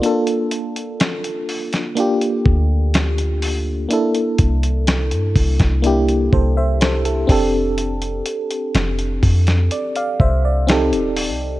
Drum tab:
HH |xxxxxxoxxx--xxo-|xxxxxxoxxx--xxo-|xxxxxxoxxx--xxo-|
SD |----o--o----o---|----o--o----o---|----o--o----o---|
BD |----------o-----|--o---oo--o---o-|------o---o-----|